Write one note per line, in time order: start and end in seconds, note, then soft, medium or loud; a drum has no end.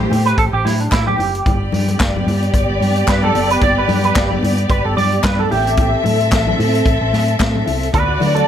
0.00 1.15 A3 medium
0.00 0.11 E4 medium
0.00 1.15 G4 medium
0.00 1.15 C5 medium
0.11 0.32 A2 medium
0.11 0.25 G4 medium
0.11 open hi-hat medium
0.11 muted conga soft
0.11 low conga medium
0.26 0.38 B4 medium
0.26 closed hi-hat soft
0.37 0.50 A1 medium
0.37 0.43 A4 medium
0.37 kick loud
0.37 closed hi-hat medium
0.37 muted conga soft
0.53 0.63 A1 loud
0.53 0.66 G4 medium
0.65 0.86 A2 medium
0.65 0.80 E4 medium
0.65 snare soft
0.65 open hi-hat medium
0.65 muted conga soft
0.65 high conga medium
0.80 0.92 D4 medium
0.80 closed hi-hat soft
0.91 1.14 A2 medium
0.91 1.07 E4 medium
0.91 kick loud
0.91 clap loud
0.91 closed hi-hat medium
0.91 muted conga soft
0.93 snare loud
0.93 clap medium
1.07 1.57 G4 medium
1.07 high conga medium
1.18 1.40 F#1 medium
1.18 open hi-hat medium
1.18 muted conga soft
1.18 low conga medium
1.35 closed hi-hat medium
1.45 1.68 G1 loud
1.45 5.47 B3 medium
1.45 5.47 G4 medium
1.45 5.47 D5 medium
1.45 kick loud
1.45 closed hi-hat medium
1.45 low conga medium
1.72 1.94 G2 medium
1.72 open hi-hat medium
1.72 muted conga soft
1.72 high conga medium
1.88 closed hi-hat soft
1.88 high conga medium
2.00 2.22 G1 medium
2.00 kick loud
2.00 snare loud
2.00 clap loud
2.00 clap medium
2.00 closed hi-hat medium
2.00 muted conga soft
2.16 high conga medium
2.27 2.48 G2 loud
2.27 open hi-hat medium
2.27 muted conga soft
2.27 low conga medium
2.42 closed hi-hat soft
2.54 2.66 G1 loud
2.54 kick loud
2.54 closed hi-hat medium
2.54 muted conga soft
2.69 2.78 G1 loud
2.81 3.02 G2 medium
2.81 open hi-hat medium
2.81 high conga medium
2.96 closed hi-hat soft
3.07 3.29 G2 loud
3.07 3.23 B4 medium
3.07 kick loud
3.07 snare loud
3.07 clap loud
3.07 clap medium
3.07 closed hi-hat medium
3.07 muted conga soft
3.23 3.49 A4 medium
3.23 high conga medium
3.34 3.57 F#1 medium
3.34 open hi-hat medium
3.34 low conga medium
3.50 3.62 B4 medium
3.50 closed hi-hat medium
3.61 3.83 G1 loud
3.61 3.78 D5 loud
3.61 kick loud
3.61 closed hi-hat medium
3.61 low conga medium
3.78 4.04 B4 medium
3.88 4.10 G2 loud
3.88 open hi-hat medium
3.88 muted conga soft
3.88 high conga medium
4.03 4.30 B4 medium
4.03 closed hi-hat medium
4.03 high conga medium
4.15 4.37 G1 loud
4.15 kick loud
4.15 snare loud
4.15 clap medium
4.15 clap loud
4.15 closed hi-hat medium
4.15 muted conga soft
4.31 high conga medium
4.43 4.64 G2 loud
4.43 open hi-hat medium
4.43 muted conga soft
4.43 low conga medium
4.58 closed hi-hat soft
4.69 4.82 G1 loud
4.69 4.85 B4 medium
4.69 kick loud
4.69 closed hi-hat medium
4.69 muted conga soft
4.85 4.94 G1 loud
4.85 4.96 A4 medium
4.97 5.18 G2 medium
4.97 5.24 D5 medium
4.97 open hi-hat medium
4.97 muted conga soft
4.97 high conga medium
5.12 closed hi-hat soft
5.23 5.45 G2 loud
5.23 5.40 B4 medium
5.23 kick loud
5.23 snare loud
5.23 clap loud
5.23 clap medium
5.23 closed hi-hat medium
5.23 muted conga soft
5.38 5.50 A4 medium
5.38 high conga medium
5.50 5.94 A1 loud
5.50 7.90 C4 medium
5.50 6.01 G4 medium
5.50 7.90 A4 medium
5.50 7.90 E5 loud
5.50 open hi-hat medium
5.50 muted conga soft
5.50 low conga medium
5.67 closed hi-hat medium
5.77 kick loud
5.77 closed hi-hat medium
5.77 muted conga soft
5.77 low conga medium
6.04 6.33 A2 medium
6.04 open hi-hat medium
6.04 muted conga soft
6.04 high conga medium
6.19 closed hi-hat soft
6.19 high conga medium
6.32 6.53 A1 loud
6.32 kick loud
6.32 snare loud
6.32 clap medium
6.32 clap loud
6.32 closed hi-hat medium
6.32 muted conga soft
6.47 high conga medium
6.58 6.80 A2 loud
6.58 open hi-hat medium
6.58 low conga medium
6.75 closed hi-hat medium
6.85 6.98 A1 loud
6.85 kick loud
6.85 closed hi-hat medium
6.85 muted conga soft
7.01 7.11 A1 loud
7.13 7.34 A2 loud
7.13 snare soft
7.13 open hi-hat medium
7.13 muted conga soft
7.13 high conga medium
7.28 closed hi-hat soft
7.39 7.61 A2 loud
7.39 kick loud
7.39 snare loud
7.39 clap loud
7.39 clap medium
7.39 closed hi-hat medium
7.39 muted conga soft
7.55 high conga medium
7.66 7.89 C2 medium
7.66 open hi-hat medium
7.66 low conga medium
7.83 closed hi-hat medium
7.93 8.15 D2 loud
7.93 8.48 A3 medium
7.93 8.48 F#4 medium
7.93 8.37 B4 medium
7.93 8.48 D5 loud
7.93 kick loud
7.93 closed hi-hat medium
7.93 low conga medium
8.20 8.42 D3 medium
8.20 open hi-hat medium
8.20 muted conga soft
8.20 high conga medium
8.35 8.48 A4 medium
8.35 closed hi-hat medium
8.35 high conga medium